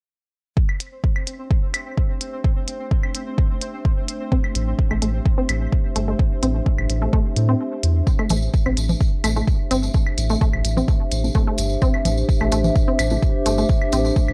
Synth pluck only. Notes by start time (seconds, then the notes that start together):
4.32 C4
4.91 A3
5.02 A3
5.38 C4
5.96 A3
6.08 A3
6.43 C4
7.02 A3
7.13 A3
7.49 C4
8.19 A3
8.30 A3
8.66 C4
9.24 A3
9.36 A3
9.71 C4
10.30 A3
10.41 A3
10.77 C4
11.35 A3
11.47 A3
11.82 C4
12.41 A3
12.52 A3
12.88 C4
13.46 A3
13.58 A3
13.93 C4